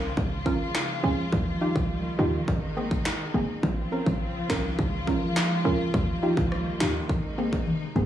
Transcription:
Already playing: C2 C#3 F3 A#3 C4 F4
0.17 C#2 F3 G#3, kick
0.46 C#4 F4 A#4, kick
0.75 finger snap, snare
1.03 C#2 C#4 F4 G#4
1.32 D#2 D#3 G3, kick
1.61 D#4 F4 G4
1.76 C#2, kick
2.19 D#2 D#4 F4 G4
2.48 G#1 C3 G#3 D#4, kick
2.77 A#3 C4 G#4
2.91 kick
3.05 finger snap, snare
3.34 G1 A#3 C4 G#4
3.63 A#1 C#3 F3 C4 F4, kick
3.92 C4 C#4 A#4
4.06 A#1, kick
4.49 C2 C4 C#4 A#4, finger snap, kick, snare
4.79 C#2 G#3 A#3, kick
5.07 C#4 F4 A#4, kick
5.36 finger snap, snare
5.64 C#2 C#4 F4 A#4
5.94 D#2 D#3 G3, kick
6.23 D#4 F4 G4
6.37 C#2, kick
6.52 cross-stick
6.80 D#2 D#4 F4 G4, finger snap, snare
7.09 G#1 C3 G#3 D#4, kick
7.38 A#3 C4 G#4
7.53 kick
7.67 high tom
7.96 G1 A#3 C4 G#4, mid tom

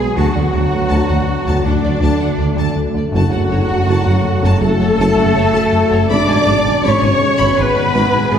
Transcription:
Already playing: F#3 G#3 B3 F#4 G#4 B4 G#5
0.16 D2 D3 F#3 A3 D4 F#4 A4 F#5 A5
0.34 D2 D3 F#5
0.52 D2 D5
0.70 D2 F#5
0.89 D2 A5
1.08 D2 F#5
1.27 D2
1.46 D2 A5
1.64 D2 D3 D4 D5 F#5
1.83 D2 D3 D5
2.01 D2 A5
2.20 D2 F#5
2.38 D2 D5
2.56 D2 A5
2.76 D2
2.94 D2 D3 D5
3.12 F#1 F#2 C#3 F#3 C#4 F#4 F#5 A5
3.30 F#1 F#3 F#5
3.49 F#1 F#2 C#5
3.68 F#1 F#2 F#5
3.87 F#1 F#2 A5
4.06 F#1 F#2 F#5
4.25 F#2
4.43 F#1 F#2 A5
4.60 F#1 F#2 A3 A4 F#5 A5
4.80 F#1 F#3 C#5
4.98 F#1 F#2 A5
5.17 F#1 F#2 F#5
5.35 F#1 F#2 C#5
5.53 F#1 F#2 A5
5.73 F#2
5.91 F#1 F#3 C#5
6.09 G#1 G#2 B2 D3 G#3 B3 D4 G#4 B4 D5 B5 D6
6.27 G#1 G#3 G#5
6.46 G#1 G#2 D5
6.65 G#1 G#2 G#5
6.83 G#1 G#2 C#4 C#5 B5 C#6
7.01 G#1 G#2 G#5
7.21 G#2
7.38 G#1 G#2 B5
7.56 G#1 G#2 B3 B4 G#5 B5
7.75 G#1 G#3 D5
7.93 G#1 G#2 B5
8.12 G#1 G#2 G#5
8.30 G#1 G#2 G#3 G#4 D5 G#5

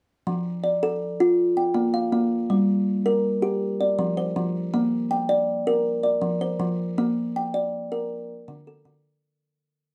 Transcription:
0.27 F3
0.64 D5
0.83 A4
1.20 F4
1.57 G5
1.74 A#3
1.94 F5
2.12 A#3
2.50 G3
3.06 A#4
3.42 G4
3.81 D5
3.99 F3
4.17 C5
4.36 F3
4.74 A#3
5.11 G5
5.29 D5
5.67 A#4
6.03 D5
6.22 F3
6.41 C5
6.60 F3
6.98 A#3
7.36 G5
7.54 D5
7.92 A#4
8.48 D3
8.67 A4
8.85 D3

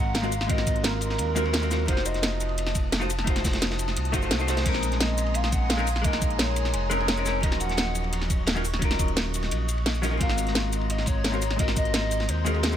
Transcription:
Already playing: G#1 G#3 C4 F4 F#4 A#4 F5 A#5 C6
0.00 F#5
0.15 F5, snare, closed hi-hat, ride
0.22 G#3 C4 F4 F#4 A#4, shaker
0.32 closed hi-hat, ride, shaker
0.41 G#1, snare
0.47 G#1 G#3 C4 F4 D#5, kick, closed hi-hat, ride
0.51 F#4 A#4
0.58 snare
0.67 kick, closed hi-hat, ride, shaker
0.76 closed hi-hat
0.84 A#4, snare, closed hi-hat, ride
1.01 closed hi-hat, ride, shaker
1.10 snare
1.18 D#2 A#4, closed hi-hat, ride
1.35 G#3 C4 F4 F#4 A#4, closed hi-hat, ride, shaker
1.44 G#3 C4 F4 F#4 A#4, ride
1.53 snare, closed hi-hat, ride
1.61 G#3 C4 F4 F#4 A#4, shaker
1.70 G#3 C4 F4 F#4 A#4, snare, closed hi-hat, ride, shaker
1.86 F1 A3 D#4 F4 C5 A5 D#6, kick, closed hi-hat, ride
1.90 F#4 C5
1.97 snare
2.05 D#5, closed hi-hat, ride, shaker
2.14 snare, closed hi-hat
2.22 snare, closed hi-hat, ride
2.40 closed hi-hat, ride, shaker
2.49 ride
2.58 closed hi-hat, ride
2.66 snare
2.75 kick, closed hi-hat, ride, shaker
2.92 snare, closed hi-hat, ride
3.00 A3 D#4 F4 F#4 C5, shaker
3.10 closed hi-hat, ride, shaker
3.18 F1, snare
3.24 F1 A3 D#4 F4, kick, closed hi-hat, ride
3.29 F#4 C5
3.36 snare, closed hi-hat
3.44 kick, snare, closed hi-hat, ride, shaker
3.53 snare, closed hi-hat, ride
3.62 snare, closed hi-hat, ride
3.70 snare, ride
3.79 closed hi-hat, ride, shaker
3.87 snare
3.96 C2, closed hi-hat, ride
4.05 closed hi-hat
4.12 F#1 A3 D#4 F4 F#4 C5, kick, closed hi-hat, ride, shaker
4.21 A3 D#4 F4 F#4 C5, ride, shaker
4.31 C2, snare, closed hi-hat, ride
4.38 A3 D#4 F4 F#4 C5, shaker
4.47 A3 D#4 F4 F#4 C5, snare, closed hi-hat, ride, shaker
4.57 snare, closed hi-hat, ride
4.63 A#1 G#3 C4 C#4 G#5 A#5 C6, kick, closed hi-hat, crash, ride
4.67 D#4 A#4
4.74 snare
4.82 closed hi-hat, ride, shaker
4.92 snare, closed hi-hat
5.00 D#5, snare, closed hi-hat, ride
5.18 closed hi-hat, ride, shaker
5.26 ride
5.34 F5, closed hi-hat, ride
5.44 snare
5.52 F#5, kick, closed hi-hat, ride, shaker
5.69 F5, snare, closed hi-hat, ride
5.77 G#3 C4 C#4 D#4 A#4, shaker
5.87 open hi-hat, ride, shaker
5.96 A#1, snare
6.02 A#1 G#3 A#3 D#5, kick, closed hi-hat, ride
6.06 D#4 A#4
6.13 snare
6.22 kick, closed hi-hat, ride, shaker
6.31 closed hi-hat
6.39 C#5, snare, closed hi-hat, ride
6.56 closed hi-hat, ride, shaker
6.64 snare
6.73 F1 C#5, closed hi-hat, ride
6.90 G#3 C4 C#4 D#4 A#4, closed hi-hat, ride, shaker
6.98 G#3 C4 C#4 D#4 A#4, ride
7.08 snare, closed hi-hat, ride
7.16 G#3 C4 C#4 D#4 A#4, shaker
7.25 G#3 C4 C#4 D#4 A#4, snare, open hi-hat, ride, shaker
7.41 D#1 F#3 C#4 D#4 D#5 C#6, kick, closed hi-hat, ride
7.45 F3 A#4
7.51 snare
7.60 F#5, closed hi-hat, ride, shaker
7.69 snare, closed hi-hat
7.77 snare, closed hi-hat, ride
7.95 closed hi-hat, ride, shaker
8.04 ride
8.13 closed hi-hat, ride
8.21 snare
8.30 kick, closed hi-hat, ride, shaker
8.47 snare, closed hi-hat, ride
8.54 F#3 C#4 D#4 F4 A#4, shaker
8.65 open hi-hat, ride, shaker
8.73 D#1, snare
8.79 D#1 F#3 C#4 D#4, kick, closed hi-hat, ride
8.84 F4 A#4
8.90 snare, closed hi-hat
8.99 kick, closed hi-hat, ride, shaker
9.08 closed hi-hat
9.16 snare, closed hi-hat, ride
9.34 closed hi-hat, ride, shaker
9.43 snare
9.51 A#1, closed hi-hat, ride
9.68 closed hi-hat, ride, shaker
9.78 ride
9.86 snare, closed hi-hat, ride
9.95 shaker
10.02 F#3 C#4 D#4 F4 A#4, snare, open hi-hat, ride, shaker
10.10 F#3 C#4 D#4 F4 A#4
10.17 G#1 G#3 C4 F4 A#5 C6, kick, closed hi-hat, ride
10.22 F#4 A#4 F5
10.29 snare
10.38 closed hi-hat, ride, shaker
10.47 snare, closed hi-hat
10.55 snare, closed hi-hat, ride
10.73 closed hi-hat, ride, shaker
10.81 ride
10.90 D#5, closed hi-hat, ride
10.98 snare
11.06 C#5, kick, closed hi-hat, ride, shaker
11.24 snare, closed hi-hat, ride
11.32 G#3 C4 F4 F#4 A#4, shaker
11.42 open hi-hat, ride, shaker
11.51 G#1, snare
11.56 G#1 G#3 C4 F4 D#5, kick, closed hi-hat, ride
11.61 F#4 A#4
11.68 snare
11.76 D#5, kick, closed hi-hat, ride, shaker
11.85 closed hi-hat
11.94 snare, closed hi-hat, ride
12.11 closed hi-hat, ride, shaker
12.20 snare
12.29 D#2 C5, closed hi-hat, ride
12.45 G#3 C4 F4 F#4 G#4 A#4, closed hi-hat, ride, shaker
12.53 G#3 C4 F4 F#4 A#4, ride
12.63 snare, closed hi-hat, ride
12.71 G#3 C4 F4 F#4 A#4, shaker

